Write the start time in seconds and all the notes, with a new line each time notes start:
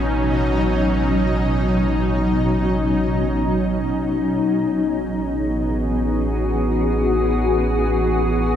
Already playing: A1 B2 F#3 C#4 D#4
4.46 A1 E3
4.55 B3
4.71 G#4
4.91 F#4